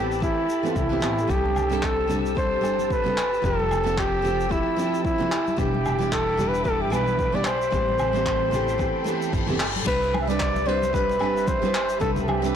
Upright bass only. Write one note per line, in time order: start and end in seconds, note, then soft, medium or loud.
0.00 0.31 A1 medium
0.76 0.96 C2 medium
1.02 1.23 A1 medium
1.30 2.63 C2 medium
2.63 3.39 G1 medium
3.44 4.60 F1 medium
5.58 6.93 E1 medium
6.93 7.68 B1 medium
7.72 8.88 A1 medium
9.33 9.82 G1 medium
9.87 11.21 C2 loud
11.21 11.96 G1 medium
12.01 12.56 C2 medium